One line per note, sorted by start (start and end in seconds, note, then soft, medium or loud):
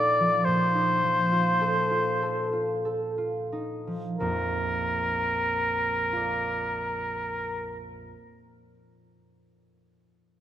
0.00 0.46 A#2 soft
0.00 0.19 F3 soft
0.00 0.73 D#4 soft
0.00 1.30 F4 soft
0.00 1.59 A4 soft
0.00 0.46 D5 medium
0.20 1.02 F3 soft
0.45 4.27 A#2 soft
0.45 2.85 C5 medium
0.75 3.51 D#4 soft
1.03 3.86 F3 soft
1.32 1.90 F4 soft
1.61 2.21 A4 soft
1.91 2.52 F4 soft
2.22 2.84 A4 soft
2.53 3.17 F4 soft
2.85 4.26 A4 soft
3.18 6.11 F4 soft
3.52 4.26 D#4 soft
3.87 7.77 F3 soft
4.18 8.10 A#1 soft
4.18 8.11 F2 soft
4.18 7.87 A#4 soft
6.13 9.82 F4 soft
6.13 9.84 A#4 soft
6.17 9.86 D5 soft